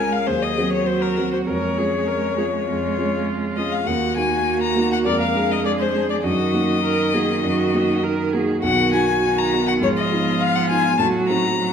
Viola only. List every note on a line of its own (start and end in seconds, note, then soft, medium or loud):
0.00 0.29 A#4 soft
0.28 0.87 G#4 soft
0.88 1.49 F#4 soft
1.47 1.79 A#4 medium
1.78 2.09 G#4 soft
2.07 2.37 A#4 soft
2.37 2.45 G#4 soft
2.67 3.84 F4 medium
3.86 5.08 F#4 medium
5.06 5.67 A#4 medium
5.65 6.26 G#4 soft
6.24 6.84 F#4 medium
6.84 7.16 A#4 medium
7.14 7.43 G#4 medium
7.43 8.05 F#4 medium
8.04 8.35 A#4 medium
8.33 8.62 G#4 medium
8.63 9.79 F#4 medium
9.82 10.97 F4 medium
10.99 11.57 F#4 medium
11.60 11.73 F#4 medium